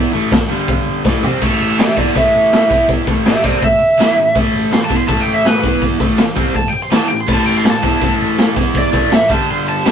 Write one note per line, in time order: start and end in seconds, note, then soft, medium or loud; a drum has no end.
0.00 0.12 E3 loud
0.00 0.13 B3 loud
0.00 0.13 E4 loud
0.12 0.30 A2 medium
0.12 0.30 E3 medium
0.12 0.31 A3 medium
0.31 0.46 A2 medium
0.31 0.46 E3 medium
0.31 kick loud
0.31 snare loud
0.31 open hi-hat medium
0.48 1.04 G2 loud
0.48 1.04 D3 loud
0.48 1.04 G3 loud
0.68 kick loud
0.68 open hi-hat medium
1.05 1.23 A2 medium
1.05 1.23 E3 medium
1.05 1.23 A3 loud
1.05 kick loud
1.05 snare medium
1.23 1.41 C3 loud
1.23 1.42 G3 loud
1.23 1.42 C4 loud
1.23 floor tom medium
1.41 1.77 A2 medium
1.41 1.78 E3 loud
1.41 1.78 A3 loud
1.41 kick loud
1.41 crash loud
1.78 1.93 A2 medium
1.78 1.93 E3 medium
1.78 1.96 G4 medium
1.78 1.97 E5 medium
1.78 snare loud
1.78 open hi-hat medium
1.96 2.14 E3 medium
1.96 2.15 B3 loud
1.96 2.15 E4 loud
1.96 2.15 A4 medium
1.96 2.15 D5 medium
1.96 kick loud
2.14 2.69 A2 loud
2.14 2.68 E3 medium
2.14 2.70 A3 loud
2.14 2.88 E5 medium
2.14 kick loud
2.14 open hi-hat medium
2.52 snare loud
2.52 open hi-hat medium
2.70 3.06 E3 medium
2.70 3.06 B3 loud
2.70 3.07 E4 loud
2.70 kick loud
2.88 kick loud
2.88 open hi-hat medium
3.07 3.24 A2 medium
3.07 3.24 E3 medium
3.07 3.26 A3 loud
3.07 kick loud
3.25 3.40 A2 medium
3.25 3.40 E3 medium
3.25 3.44 G4 medium
3.25 3.44 E5 loud
3.25 snare loud
3.25 open hi-hat medium
3.43 3.61 C3 medium
3.43 3.61 G3 loud
3.43 3.62 C4 loud
3.43 3.63 A4 medium
3.43 3.62 D5 medium
3.43 kick medium
3.61 3.76 A2 medium
3.61 3.76 E3 medium
3.61 4.34 E5 loud
3.61 kick medium
3.61 open hi-hat medium
3.80 muted overdriven electric guitar stroke medium
3.98 4.16 E3 medium
3.98 4.17 B3 medium
3.98 4.17 E4 loud
3.98 snare loud
3.98 open hi-hat medium
4.17 4.32 A2 medium
4.17 4.32 E3 medium
4.35 4.70 A2 medium
4.35 4.70 E3 medium
4.35 4.72 A3 loud
4.35 kick loud
4.35 open hi-hat medium
4.72 4.87 A2 medium
4.72 4.87 E3 medium
4.72 4.84 C6 loud
4.72 snare loud
4.72 open hi-hat medium
4.84 4.96 A5 medium
4.89 5.07 E3 loud
4.89 5.08 B3 loud
4.89 5.08 E4 loud
4.89 kick loud
4.97 5.08 C6 medium
5.08 5.63 A2 loud
5.08 5.62 E3 medium
5.08 5.64 A3 loud
5.08 5.20 A5 medium
5.08 kick loud
5.08 open hi-hat medium
5.21 5.33 G5 medium
5.34 5.46 E5 medium
5.45 5.82 B4 loud
5.45 snare loud
5.45 open hi-hat medium
5.63 5.99 E3 loud
5.63 6.00 B3 loud
5.63 6.00 E4 loud
5.63 kick loud
5.82 kick loud
5.82 open hi-hat medium
5.99 6.18 A2 medium
5.99 6.18 E3 medium
5.99 6.19 A3 medium
5.99 kick loud
6.17 6.33 A2 medium
6.17 6.34 E3 medium
6.17 snare loud
6.17 open hi-hat medium
6.36 6.54 C3 loud
6.36 6.55 G3 loud
6.36 6.55 C4 loud
6.36 kick loud
6.54 6.70 A2 medium
6.54 6.70 E3 medium
6.54 6.68 A5 loud
6.54 kick medium
6.54 open hi-hat medium
6.68 6.80 G5 medium
6.73 muted overdriven electric guitar stroke medium
6.82 6.93 C6 medium
6.91 7.09 E3 medium
6.91 7.10 B3 medium
6.91 7.10 E4 medium
6.91 snare loud
6.91 open hi-hat medium
6.95 7.06 A5 loud
7.08 7.25 A2 medium
7.08 7.25 E3 medium
7.08 7.18 G5 medium
7.21 7.30 C6 medium
7.27 7.63 A2 loud
7.27 7.63 E3 loud
7.27 7.64 A3 loud
7.27 kick loud
7.27 crash loud
7.33 7.43 A5 medium
7.46 7.55 G5 medium
7.57 7.67 C6 medium
7.64 7.79 A2 medium
7.64 7.79 E3 medium
7.64 snare loud
7.64 open hi-hat medium
7.70 8.39 A5 loud
7.82 8.00 E3 loud
7.82 8.01 B3 loud
7.82 8.01 E4 loud
7.82 kick loud
8.01 8.55 A2 loud
8.01 8.54 E3 loud
8.01 8.56 A3 loud
8.01 kick loud
8.01 open hi-hat medium
8.38 snare loud
8.38 open hi-hat medium
8.55 8.92 E3 loud
8.55 8.92 B3 loud
8.55 8.93 E4 loud
8.55 kick loud
8.75 9.12 D5 loud
8.75 kick loud
8.75 open hi-hat medium
8.92 9.09 A2 medium
8.92 9.10 E3 medium
8.92 9.11 A3 loud
8.92 kick loud
9.10 9.25 A2 medium
9.10 9.26 E3 medium
9.10 9.30 E5 loud
9.10 snare loud
9.10 open hi-hat medium
9.29 9.83 G2 medium
9.29 9.84 D3 loud
9.29 9.84 G3 loud
9.29 9.48 A5 medium
9.29 kick loud
9.49 9.67 C6 loud
9.49 open hi-hat medium
9.69 9.92 A5 loud
9.85 9.92 A2 medium
9.85 9.92 E3 medium
9.85 9.92 A3 medium
9.85 snare loud
9.85 open hi-hat medium